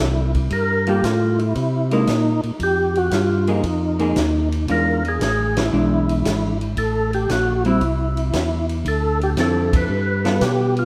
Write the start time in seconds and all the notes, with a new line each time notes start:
Already playing: E4
0.00 C2
0.34 kick, ride
0.50 G2 A#4, kick, ride
0.87 G3 A#3 F4 G4 A4, ride
1.03 A2 F4, kick, snare, hi-hat pedal, ride
1.39 E4, ride
1.55 C3, kick, ride
1.91 G#3 A#3 D#4 E4, ride
2.07 A#2, kick, snare, hi-hat pedal, ride
2.43 A#2, ride
2.59 F2 G4, kick, ride
2.95 F#4, ride
3.11 G2 F4, kick, snare, hi-hat pedal, ride
3.47 F3 A#3 D#4 G#4, ride
3.63 F2, kick, ride
3.99 F3 A#3 D#4 G#4, ride
4.16 D#2, kick, snare, hi-hat pedal, ride
4.52 ride
4.68 E2 E3 G#3 D4 F4 A#4, kick, ride
5.05 G#4, ride
5.20 A1 G#4, kick, snare, hi-hat pedal, ride
5.57 E4, snare, ride
5.72 B1 E3 G#3 D4
6.09 ride
6.25 G#1, kick, snare, hi-hat pedal, ride
6.61 ride
6.76 A1 A4, kick, ride
7.13 G4, ride
7.29 A#1 F#4, kick, snare, hi-hat pedal, ride
7.65 G3 C4 E4, ride
7.81 C2, kick, ride
8.17 ride
8.33 E2, kick, snare, hi-hat pedal, ride
8.69 ride
8.85 D2 A4, kick, ride
9.21 G4, ride
9.37 F2 D3 F3 C4 E4 A4, kick, snare, hi-hat pedal, ride
9.73 B4, kick, ride
9.89 G2
10.25 G3 B3 F4 A4, snare, ride
10.41 B2 G4, kick, snare, hi-hat pedal, ride
10.76 F4, ride